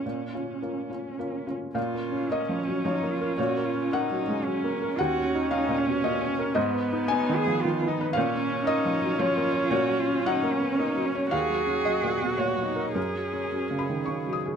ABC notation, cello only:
X:1
M:3/4
L:1/8
Q:1/4=112
K:A#phr
V:1 name="Cello"
C4- C z | E2 C2 D E | F E D2 C2 | F2 D C3 |
B,2 D G E D | C C D2 E2 | F E D C D C | G4 F D |
C4- C z |]